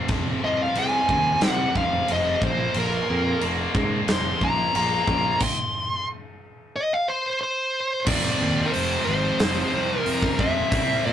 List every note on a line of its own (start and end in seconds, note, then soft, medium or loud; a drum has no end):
0.00 0.10 F3 medium
0.00 0.59 C4 medium
0.08 0.33 F1 medium
0.08 0.42 F2 medium
0.08 0.43 C3 medium
0.08 0.44 F3 medium
0.08 kick loud
0.08 crash medium
0.43 0.67 C2 medium
0.43 0.75 F2 medium
0.43 0.76 C3 medium
0.43 0.77 F3 medium
0.43 0.60 D#5 loud
0.62 0.77 F5 medium
0.75 1.00 C2 medium
0.75 1.09 F2 medium
0.75 1.10 C3 medium
0.75 1.11 F3 medium
0.75 1.50 G#5 loud
0.75 crash medium
1.09 1.33 D#2 medium
1.09 1.42 F2 loud
1.09 1.43 C3 loud
1.09 1.43 F3 loud
1.09 kick medium
1.41 1.66 C2 medium
1.41 1.75 F2 medium
1.41 1.76 C3 medium
1.41 1.77 F3 medium
1.41 snare loud
1.41 crash medium
1.50 1.74 F#5 loud
1.75 1.99 F1 medium
1.75 2.08 F2 medium
1.75 2.09 C3 medium
1.75 2.09 F3 loud
1.75 2.09 F5 medium
1.75 kick medium
2.08 2.33 F1 loud
2.08 2.40 F2 medium
2.08 2.41 C3 loud
2.08 2.41 F3 loud
2.08 2.43 D#5 medium
2.08 crash medium
2.42 2.66 A#1 medium
2.42 2.75 A#2 medium
2.42 2.76 F3 medium
2.42 2.76 A#3 loud
2.42 2.76 C5 medium
2.42 kick loud
2.74 2.99 A#1 loud
2.74 3.08 A#2 medium
2.74 3.09 F3 medium
2.74 3.09 A#3 loud
2.74 crash medium
2.79 3.42 A#4 medium
3.09 3.33 F2 medium
3.09 3.42 A#2 medium
3.09 3.42 F3 medium
3.09 3.43 A#3 medium
3.41 3.65 F1 medium
3.41 3.73 A#2 medium
3.41 3.74 F3 loud
3.41 3.75 A#3 loud
3.41 crash medium
3.74 3.99 G#2 medium
3.74 4.08 A#2 medium
3.74 4.08 F3 medium
3.74 4.09 A#3 loud
3.74 kick medium
4.08 4.32 F1 loud
4.08 4.40 A#2 medium
4.08 4.40 F3 medium
4.08 4.41 A#3 medium
4.08 snare loud
4.08 crash medium
4.12 4.43 C6 medium
4.41 4.65 A#1 medium
4.41 4.73 A#2 medium
4.41 4.74 F3 loud
4.41 4.75 A#3 medium
4.41 4.75 A#5 loud
4.41 kick medium
4.75 4.99 A#1 medium
4.75 5.07 A#2 loud
4.75 5.07 F3 loud
4.75 5.07 A#3 loud
4.75 5.40 A#5 medium
4.75 crash medium
5.07 5.31 A#1 medium
5.07 5.39 A#2 medium
5.07 5.39 F3 medium
5.07 5.40 A#3 medium
5.07 kick medium
5.40 6.07 C6 loud
5.40 kick loud
5.40 crash loud
6.76 6.93 D#5 loud
6.93 7.08 F5 medium
7.08 7.39 C5 medium
7.08 7.41 C6 medium
7.41 8.08 C5 medium
7.41 8.06 C6 loud
8.06 8.28 F1 loud
8.06 9.37 F2 medium
8.06 8.39 F2 loud
8.06 8.39 C3 loud
8.06 9.38 C3 medium
8.06 8.40 F3 loud
8.06 9.39 F3 medium
8.06 8.40 G#3 medium
8.06 8.42 C4 loud
8.06 8.41 F4 loud
8.06 8.69 D5 medium
8.06 kick loud
8.06 crash loud
8.40 8.62 D#2 medium
8.40 8.72 F2 medium
8.40 8.72 C3 medium
8.40 8.73 F3 medium
8.40 8.73 G#3 medium
8.40 8.74 C4 medium
8.40 8.73 F4 loud
8.66 8.73 A#4 medium
8.72 8.95 F1 medium
8.72 9.05 F2 medium
8.72 9.05 C3 medium
8.72 9.06 F3 medium
8.72 9.06 G#3 medium
8.72 9.07 C4 medium
8.72 9.07 F4 medium
8.72 9.04 C5 medium
8.72 open hi-hat medium
9.06 9.28 G#1 medium
9.06 9.39 F2 medium
9.06 9.39 C3 medium
9.06 9.39 F3 loud
9.06 9.40 G#3 loud
9.06 9.40 C4 medium
9.06 9.40 F4 loud
9.06 9.99 C5 loud
9.39 9.62 F1 medium
9.39 10.70 F2 medium
9.39 9.72 F2 medium
9.39 9.72 C3 medium
9.39 10.70 C3 medium
9.39 9.72 F3 medium
9.39 10.72 F3 medium
9.39 9.72 G#3 medium
9.39 9.73 C4 medium
9.39 9.74 F4 medium
9.39 snare loud
9.39 open hi-hat medium
9.73 9.94 C2 loud
9.73 10.05 F2 medium
9.73 10.06 C3 medium
9.73 10.06 F3 medium
9.73 10.06 G#3 medium
9.73 10.07 C4 medium
9.73 10.07 F4 loud
9.99 10.43 A#4 loud
10.06 10.28 C2 medium
10.06 10.38 F2 medium
10.06 10.38 C3 medium
10.06 10.38 F3 medium
10.06 10.39 G#3 medium
10.06 10.39 C4 medium
10.06 10.40 F4 medium
10.06 open hi-hat medium
10.22 kick medium
10.39 10.60 F1 medium
10.39 10.70 F2 medium
10.39 10.69 C3 medium
10.39 10.70 F3 medium
10.39 10.71 G#3 medium
10.39 10.70 C4 medium
10.39 10.71 F4 medium
10.39 11.05 E5 loud
10.39 kick medium
10.70 10.93 C2 medium
10.70 11.04 C3 medium
10.70 11.13 C3 medium
10.70 11.05 G3 loud
10.70 11.13 G3 medium
10.70 11.05 C4 loud
10.70 11.05 E4 loud
10.70 kick loud
10.70 open hi-hat medium
10.75 11.13 C4 loud
11.05 11.13 A#2 medium
11.05 11.13 C3 medium
11.05 11.13 G3 medium
11.05 11.13 C4 medium
11.05 11.13 E4 loud
11.05 11.13 E5 loud